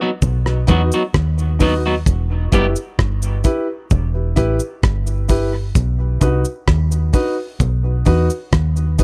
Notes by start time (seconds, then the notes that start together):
0.01 F#3 B3 D#4 F#4
0.22 B1, kick, cabasa
0.45 F#4 B4, cross-stick
0.67 E2 F#3 B3 D#4 F#4 B4, kick, closed hi-hat, cabasa
0.71 F#4
0.92 F#3 B3 D#4 F#4, cabasa
1.14 D#2, kick, cross-stick
1.38 cabasa
1.59 F#3 B3 D#4 F#4 B4, kick, open hi-hat, cabasa
1.86 F#3 B3 D#4 F#4
2.06 E1, kick, hi-hat pedal, cabasa
2.52 F#1 G3 B3 E4 G4 B4, kick, closed hi-hat, cabasa
2.76 cabasa
2.99 G1, kick, cross-stick
3.22 cabasa
3.44 E4 G4 B4, kick, closed hi-hat, cabasa
3.91 E1, kick, cabasa
4.14 G4 B4
4.36 A1 E4 G4 B4, kick, closed hi-hat, cabasa
4.60 cabasa
4.83 G1, kick, cross-stick
5.07 cabasa
5.28 E4 G4 B4, kick, open hi-hat, cabasa
5.75 B1, kick, hi-hat pedal, cabasa
6.21 C2 D#4 F#4 B4, kick, closed hi-hat, cabasa
6.45 cabasa
6.68 D#2, kick, cross-stick
6.92 cabasa
7.13 D#4 F#4 B4, kick, open hi-hat, cabasa
7.59 B1, kick, hi-hat pedal, cabasa
7.83 F#4 B4
8.05 E2 D#4 F#4 B4, kick, open hi-hat, cabasa
8.30 cabasa
8.52 D#2, kick, cross-stick, hi-hat pedal
8.76 cabasa
8.98 D#4 F#4 B4, kick, open hi-hat, cabasa